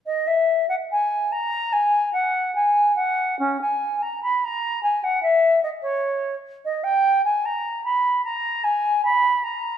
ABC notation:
X:1
M:4/4
L:1/16
Q:1/4=74
K:G#m
V:1 name="Flute"
d e2 f g2 a2 g2 f2 g2 f2 | C g2 a b a2 g f e2 d c3 z | d =g2 ^g a2 b2 a2 g2 b2 a2 |]